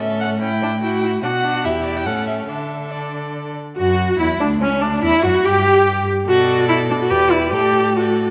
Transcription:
0.00 1.21 A2 medium
0.00 0.40 C#4 soft
0.00 0.40 A4 soft
0.00 0.20 E5 medium
0.21 0.29 F#5 medium
0.41 0.49 C#4 medium
0.41 0.82 E4 medium
0.41 1.02 G5 medium
0.62 0.70 D4 medium
0.83 1.02 E4 medium
0.83 1.22 F#4 medium
1.03 1.11 E4 medium
1.23 1.66 B2 medium
1.23 1.31 D4 medium
1.23 1.66 F#4 medium
1.23 1.66 F#5 medium
1.44 1.66 D4 medium
1.64 2.08 E2 medium
1.64 2.08 E4 soft
1.64 2.08 G4 medium
1.64 1.84 E5 medium
1.85 1.98 D5 medium
1.97 2.07 G5 medium
2.06 2.48 A2 soft
2.06 2.51 C#4 soft
2.06 2.49 A4 soft
2.06 2.26 F#5 medium
2.27 2.35 E5 soft
2.48 3.55 D3 soft
2.48 3.57 D4 soft
2.48 3.55 A4 soft
2.48 2.92 E5 medium
2.91 3.56 D5 soft
3.77 4.17 F#2 medium
3.77 4.20 F#4 medium
3.77 4.17 F#4 medium
4.19 4.39 E2 medium
4.19 4.42 E4 medium
4.19 4.40 E4 medium
4.19 4.28 E4 medium
4.40 4.62 D2 medium
4.40 4.48 D4 medium
4.40 4.61 D4 medium
4.40 4.64 D4 medium
4.61 4.84 C#2 medium
4.61 4.81 C#4 medium
4.61 4.83 C#4 medium
4.61 4.81 C#4 medium
4.81 5.02 D2 medium
4.81 5.03 D4 medium
4.81 5.04 D4 medium
4.81 4.90 D4 medium
5.02 5.11 E2 medium
5.02 5.25 E4 medium
5.02 5.26 E4 medium
5.02 5.24 E4 medium
5.23 5.32 F#2 medium
5.23 5.46 F#4 medium
5.23 5.47 F#4 medium
5.23 5.46 F#4 medium
5.45 6.06 G2 medium
5.45 6.07 G4 medium
6.28 7.12 B2 medium
6.28 6.66 F#4 loud
6.28 7.12 A4 medium
6.28 7.06 D5 medium
6.69 6.77 E4 medium
6.90 6.94 D4 medium
7.01 7.12 F#4 medium
7.10 7.54 E2 medium
7.10 7.32 G4 medium
7.10 7.55 B4 medium
7.10 7.52 D5 medium
7.31 7.51 E4 medium
7.52 8.30 A2 medium
7.52 7.98 G4 medium
7.52 7.95 A4 soft
7.52 7.95 D5 soft
7.96 8.30 F#4 medium
7.96 8.30 A4 soft
7.96 8.30 D5 soft

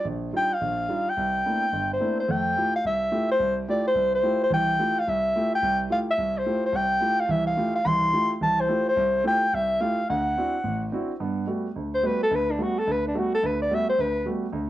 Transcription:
0.04 0.29 A#1 medium
0.33 0.51 G3 soft
0.33 0.52 D4 soft
0.33 0.52 D#4 soft
0.33 0.52 F4 medium
0.33 0.55 G5 medium
0.54 1.11 F5 medium
0.61 0.85 A#1 medium
0.89 1.07 G3 soft
0.89 1.08 D4 soft
0.89 1.08 D#4 soft
0.89 1.08 F4 medium
1.10 1.92 G5 medium
1.17 1.41 C2 medium
1.45 1.63 A3 medium
1.45 1.63 A#3 soft
1.45 1.64 C4 soft
1.45 1.64 D4 soft
1.45 1.64 E4 medium
1.72 1.97 G1 medium
1.93 2.18 C5 medium
2.00 2.19 A3 soft
2.00 2.19 A#3 soft
2.00 2.19 C4 soft
2.00 2.19 D4 soft
2.00 2.19 E4 medium
2.20 2.33 C5 medium
2.28 2.52 F2 medium
2.28 2.52 A3 medium
2.28 2.75 G5 medium
2.56 2.75 A3 medium
2.56 2.75 E4 soft
2.56 2.75 F4 soft
2.56 2.75 G4 medium
2.76 2.85 F5 medium
2.84 3.08 C2 medium
2.84 3.27 E5 medium
3.12 3.30 A3 medium
3.12 3.30 E4 soft
3.12 3.30 F4 soft
3.12 3.30 G4 medium
3.31 3.56 C5 medium
3.40 3.64 C2 medium
3.68 3.86 A3 medium
3.68 3.87 E4 soft
3.68 3.87 F4 medium
3.68 3.87 G4 medium
3.68 3.85 D5 medium
3.88 4.12 C5 medium
3.95 4.19 C2 medium
4.15 4.40 C5 medium
4.23 4.42 A3 medium
4.23 4.42 E4 soft
4.23 4.42 F4 medium
4.23 4.42 G4 medium
4.44 4.52 C5 medium
4.50 4.75 C2 medium
4.50 4.75 E3 medium
4.50 5.01 G5 medium
4.79 4.98 A3 medium
4.79 4.97 E4 soft
4.79 4.98 F4 soft
4.79 4.98 G4 medium
4.99 5.11 F5 medium
5.07 5.31 C2 medium
5.07 5.53 E5 medium
5.36 5.54 A3 medium
5.36 5.54 E4 soft
5.36 5.54 F4 soft
5.36 5.54 G4 medium
5.55 5.80 G5 medium
5.62 5.86 C2 medium
5.90 6.09 A3 soft
5.90 6.09 E4 soft
5.90 6.09 F4 soft
5.90 6.09 G4 medium
5.90 6.00 F5 medium
6.11 6.40 E5 medium
6.18 6.42 C2 medium
6.38 6.65 C5 medium
6.46 6.64 A3 medium
6.46 6.65 E4 soft
6.46 6.65 F4 soft
6.46 6.65 G4 medium
6.66 6.78 C5 medium
6.73 6.97 C2 medium
6.73 7.22 G5 loud
7.01 7.20 A3 soft
7.01 7.20 E4 soft
7.01 7.20 F4 soft
7.01 7.20 G4 medium
7.21 7.33 F5 medium
7.29 7.53 C2 medium
7.29 7.53 E3 medium
7.29 7.47 E5 loud
7.47 7.73 F5 medium
7.57 7.76 A3 medium
7.57 7.76 E4 soft
7.57 7.76 F4 medium
7.57 7.76 G4 medium
7.76 7.89 F5 medium
7.85 8.09 C2 medium
7.85 8.09 E3 medium
7.85 8.31 C6 loud
8.13 8.31 A3 medium
8.13 8.32 E4 soft
8.13 8.32 F4 medium
8.13 8.32 G4 medium
8.41 8.65 C2 medium
8.41 8.65 E3 medium
8.41 8.62 A5 loud
8.61 8.87 C5 medium
8.68 8.87 A3 medium
8.68 8.87 E4 medium
8.68 8.87 F4 medium
8.68 8.87 G4 medium
8.89 9.23 C5 loud
8.96 9.21 C2 medium
9.24 9.43 A3 medium
9.24 9.43 E4 medium
9.24 9.43 F4 soft
9.24 9.43 G4 medium
9.24 9.56 G5 medium
9.54 9.77 C2 medium
9.54 9.83 E5 medium
9.80 9.99 A3 medium
9.80 9.99 E4 soft
9.80 9.99 F4 soft
9.80 9.99 G4 medium
9.80 10.09 F5 medium
10.10 10.33 D2 medium
10.10 10.89 F#5 medium
10.37 10.55 C4 medium
10.37 10.55 D4 medium
10.37 10.55 E4 soft
10.37 10.55 F#4 medium
10.64 10.88 A1 medium
10.92 11.10 C4 medium
10.92 11.11 D4 medium
10.92 11.11 E4 soft
10.92 11.11 F#4 medium
11.20 11.44 G2 medium
11.20 11.44 B3 medium
11.47 11.66 G3 soft
11.47 11.66 A3 soft
11.47 11.66 B3 soft
11.47 11.66 F#4 medium
11.76 12.00 D2 medium
11.95 12.08 C5 medium
12.03 12.22 G3 medium
12.03 12.22 A3 soft
12.03 12.22 B3 soft
12.03 12.22 F#4 medium
12.03 12.22 B4 medium
12.23 12.36 A4 medium
12.31 12.55 D2 medium
12.35 12.53 B4 medium
12.51 12.64 D4 medium
12.58 12.77 G3 medium
12.58 12.77 A3 soft
12.58 12.78 B3 soft
12.58 12.77 F#4 medium
12.63 12.81 F#4 medium
12.79 12.93 A4 medium
12.87 13.11 D2 medium
12.91 13.07 B4 medium
13.08 13.20 D4 medium
13.14 13.33 G3 medium
13.14 13.34 A3 medium
13.14 13.33 B3 soft
13.14 13.34 F#4 medium
13.19 13.34 F#4 medium
13.35 13.47 A4 medium
13.43 13.67 D2 medium
13.43 13.62 B4 medium
13.62 13.76 D5 medium
13.71 13.89 G3 medium
13.71 13.89 A3 soft
13.71 13.90 B3 soft
13.71 13.90 F#4 medium
13.71 13.89 E5 loud
13.90 14.02 C5 loud
13.99 14.23 D2 medium
13.99 14.28 B4 medium
14.26 14.45 G3 medium
14.26 14.45 A3 soft
14.26 14.45 B3 medium
14.26 14.45 F#4 medium
14.53 14.70 D2 medium

